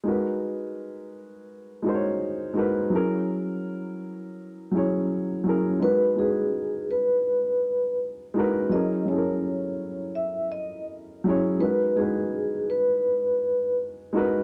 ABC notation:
X:1
M:4/4
L:1/8
Q:"Swing 16ths" 1/4=83
K:G#m
V:1 name="Vibraphone"
z8 | z8 | B G2 B3 z2 | d c3 e d z2 |
B G2 B3 z2 |]
V:2 name="Upright piano"
[G,DFAB]3 z2 [G,DFA^Bc] z [G,DFA=B] | [F,CEGA]3 z2 [F,CEGc] z [F,CEGA] | [G,DFAB] [G,DFGB]3 z3 [G,DFAB] | [F,CEGA] [F,CEG=A^A]3 z3 [F,CEGc] |
[G,DFAB] [G,DFGB]3 z3 [G,DFAB] |]